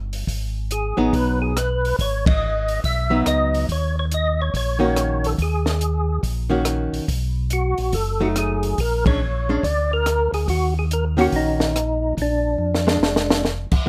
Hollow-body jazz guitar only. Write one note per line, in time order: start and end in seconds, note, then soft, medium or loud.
0.97 1.52 F#3 medium
0.97 1.52 B3 medium
0.97 1.53 D#4 medium
3.10 3.65 F#3 medium
3.10 3.65 B3 medium
3.10 3.66 D#4 medium
4.79 5.35 D#3 medium
4.79 5.35 A#3 medium
4.79 5.35 C#4 medium
4.79 5.35 F#4 medium
6.50 7.05 D#3 medium
6.50 7.05 A#3 medium
6.50 7.05 C#4 medium
6.50 7.05 F#4 medium
8.21 8.75 F#3 soft
8.21 8.75 A3 medium
8.21 8.75 D#4 medium
9.06 9.19 G#3 medium
9.06 9.20 C#4 medium
9.06 9.20 D4 medium
9.49 9.62 G#3 medium
9.49 9.62 C#4 medium
9.49 9.62 D4 medium
11.17 11.71 D#3 medium
11.17 11.72 A#3 medium
11.17 11.72 C#4 medium
11.17 11.72 F#4 medium
12.87 13.41 G#3 medium
12.87 13.42 D4 medium